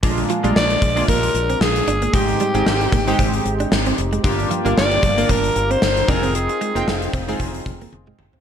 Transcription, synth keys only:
0.03 A#2 G#3 A#3 D4 F4
0.43 G#3 A#3 D4 F4
0.96 G#3 A#3 D4 F4
2.13 G#2 G#3 C4 D#4 G4
2.54 G#3 C4 D#4 G4
3.07 G#3 C4 D#4 G4
4.24 G2 A#3 D4 F4 G4
4.65 A#3 D4 F4 A#4
5.17 A#3 D4 F4 A#4
6.08 C4 D#4 F4 G#4
6.75 C4 D#4 F4 G5
7.28 C4 D#4 F4 G#4

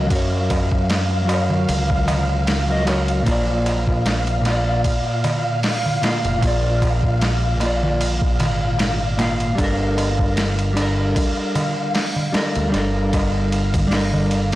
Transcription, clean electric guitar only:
0.07 F#3 F#4
0.13 A#4 C#5
1.25 F#3 F#4
1.31 A#4 C#5
2.67 F#3 F#4 A#4
2.72 D#5
2.85 F#3 F#4 A#4
2.89 C#5
3.22 A#2 A#3
3.28 F4 D5
4.41 A#2 A#3
4.47 F4 D5
6.02 A#2 A#3 F4
6.06 F5
6.38 A#2 A#3
6.44 F4 D5
7.57 A#2 A#3
7.63 F4 D5
9.17 A#2 A#3 F4
9.21 F5
9.55 G3 D4
9.61 A4 A#4
10.73 G3 D4
10.79 A4 A#4
12.32 G3 D4 A4
12.37 A#4
12.69 G3 D4
12.75 A4 A#4
13.88 G3 D4
13.93 A4 A#4

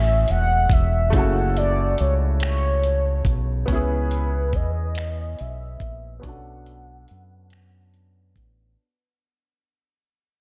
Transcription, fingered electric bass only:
Already playing: A1
0.30 E1
0.71 E1
1.14 F#1
2.00 C#2
3.26 B1
3.69 C#2
4.54 E2
5.41 B1
5.81 A#1
6.24 B1
7.11 F#2
8.37 A1

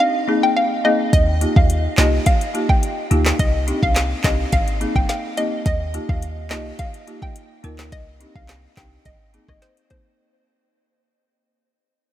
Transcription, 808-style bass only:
1.13 D#2
1.56 D#2
1.98 C2
3.11 D2
3.39 C2
3.83 C2
4.24 C2
4.53 G#1
4.96 G#1
5.66 D#2
6.09 D#2
6.51 C2
7.64 D2
7.92 C2
8.36 C2
8.77 C2
9.06 G#1
9.49 G#1

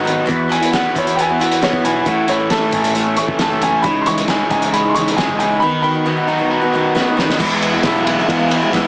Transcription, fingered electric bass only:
Already playing: G#1
0.29 E2
0.95 E2
1.73 E2
1.84 B1
2.07 A1
2.73 A1
3.28 F#1
3.84 C#2
4.51 C#2
5.29 C#2
5.41 C#2
7.40 E2
7.84 B1
8.29 E3
8.73 E2

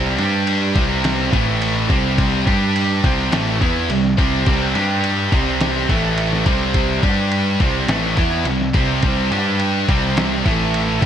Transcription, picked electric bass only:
Already playing: C2
0.18 G2
0.76 C2
1.33 A1
1.90 C2
2.47 G2
3.04 C2
3.32 A1
3.61 E2
3.89 C2
4.18 C2
4.47 C2
4.76 G2
5.32 C2
5.89 A1
6.47 C2
7.03 G2
7.60 C2
7.88 A1
8.18 E2
8.45 C2
8.75 C2
9.03 C2
9.32 G2
9.89 C2
10.45 A1
11.02 C2

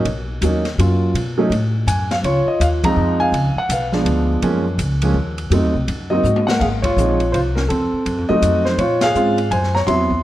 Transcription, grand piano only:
0.43 F#3 A#3 C#4 D#4
0.79 F#3 A#3 C#4 F4
1.38 F#3 A3 C#4 D#4
1.88 G#5
2.11 F5
2.25 F4 C#5
2.48 D#5
2.61 F5
2.84 F3 G#3 C4 D#4 A#5
3.20 F5 G#5
3.58 F#5
3.72 B4 F5
3.92 F3 G#3 B3 D4
4.43 F3 G#3 A#3 C#4
5.03 F3 G#3 A#3 C#4
5.52 F#3 A3 C4 D#4
6.10 F#3 A#3 C4 D#4 F#4 D#5
6.47 A#4 F#5
6.60 G#4 F5
6.82 F4 C#5
6.98 F3 G#3 C4 D#4
7.32 F4 C5
7.55 C#4 A#4
7.68 C4 A4
8.29 F#3 A3 C4 D#4 F#4 D#5
8.65 D#4 C5
8.79 F4 C#5
9.02 G#4 F5
9.15 G#3 C4 C#4 F4
9.51 C5 G#5
9.75 C#5 A#5
9.87 F#3 B3 C4 E4 E5 C6

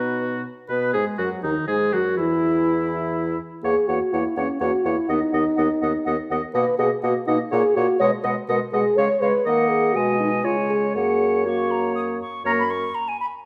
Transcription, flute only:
Already playing: B4
0.69 B4
0.94 G#4
1.19 F#4
1.44 D#4
1.69 G#4
1.93 F#4
2.18 E4
3.64 F#5
3.87 F#5
4.12 F#5
4.35 F#5
4.59 F#5
4.83 F#5
5.07 F#5
5.31 F#5
5.56 F#5
5.80 F#5
6.04 F#5
6.29 F#5
6.54 F#5
6.78 F#5
7.02 F#5
7.26 F#5
7.51 F#5
7.76 F#5
7.99 F#5
8.24 F#5
8.49 F#5
8.74 F#5
8.98 F5
9.22 F5
9.47 F#5
9.95 G#5
10.45 G#5
10.95 F#5
11.46 C#6
11.70 A#5
11.95 D#6
12.21 C#6
12.46 A#5
12.59 B5
12.70 C#6
12.94 A#5
13.08 G#5
13.20 B5

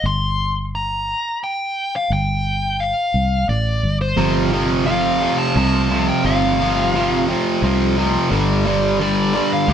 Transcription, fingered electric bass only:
0.04 G1
2.10 G1
3.14 C2
3.49 A1
3.83 G1
4.18 G1
5.56 C2
6.25 G1
7.62 C2
8.31 G1
9.68 D2

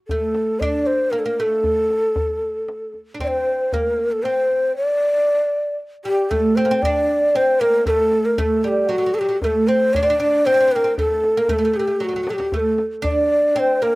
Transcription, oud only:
0.11 A3
0.62 D4
1.13 A#3
1.26 A#3
1.40 A3
3.14 D4
3.20 C4
3.74 A#3
4.25 C4
6.05 G3
6.31 A3
6.57 C4
6.65 A#3
6.71 C4
6.85 D4
7.35 C4
7.61 A#3
7.87 A3
8.38 A3
8.64 G3
8.89 F#3
8.98 F#3
9.06 F#3
9.14 F#3
9.21 F#3
9.29 F#3
9.44 A3
9.68 C4
9.96 D4
10.03 C4
10.10 D4
10.20 D4
10.47 C4
10.54 C4
10.60 C4
10.68 C4
10.76 C4
10.84 C4
10.99 A3
11.37 A#3
11.49 A3
11.58 A3
11.65 A3
11.73 A3
11.79 A3
11.87 A3
12.00 F#3
12.09 F#3
12.16 F#3
12.23 F#3
12.30 F#3
12.38 F#3
12.54 A3
13.02 D4
13.56 C4
13.82 A#3

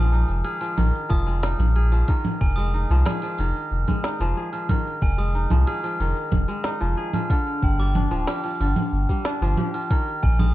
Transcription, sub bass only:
Already playing: A#1
0.29 F1
0.78 A#1
1.10 F1
1.59 A#1
2.41 F1
2.90 C2
3.39 F1
3.71 F1
4.20 F1
5.02 F1
5.51 C2
6.00 F1
6.32 F1
6.81 F1
7.62 G1
8.11 D1
8.60 G1
8.92 G1
9.41 G1
10.23 A#1

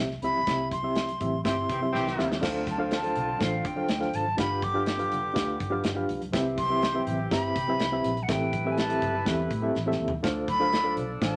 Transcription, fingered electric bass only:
Already playing: C2
0.22 C#2
0.47 C2
1.21 A1
1.45 G1
1.69 C3
1.94 C2
2.19 D#2
2.43 D2
3.16 B1
3.41 A1
3.65 D3
3.89 D2
4.14 G#1
4.38 G1
5.11 F1
5.36 D2
5.60 G2
5.85 G1
6.09 C#2
6.33 C2
7.07 A1
7.32 G1
7.55 C3
7.80 C2
8.05 A#1
8.29 A1
9.02 G1
9.27 E2
9.50 A2
9.76 A1
9.99 D#2
10.24 D2
10.96 B1
11.22 A1

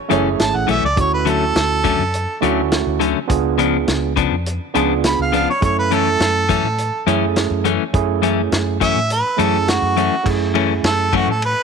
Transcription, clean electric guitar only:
0.10 F#2 E3 A3 C#4
0.67 F#2 E3 A3 C#4
1.25 D3 F#3 A3 C#4
1.84 D3 F#3 A3 C#4
2.42 D3 F#3 A3 C#4
3.00 D3 F#3 A3 C#4
3.58 C#3 F3 B3 D4
4.16 C#3 F3 B3 D4
4.75 C#3 F3 B3 D4
5.32 C#3 F3 B3 D4
5.91 F#2 E3 A3 C#4
6.49 F#2 E3 A3 C#4
7.07 F#2 E3 A3 C#4
7.64 F#2 E3 A3 C#4
8.22 F#2 E3 A3 C#4
8.80 F#2 E3 A3 C#4
9.38 F#2 E3 A3 C#4
9.97 F#2 E3 A3 C#4
10.54 F#2 E3 A3 C#4
11.13 F#2 E3 A3 C#4

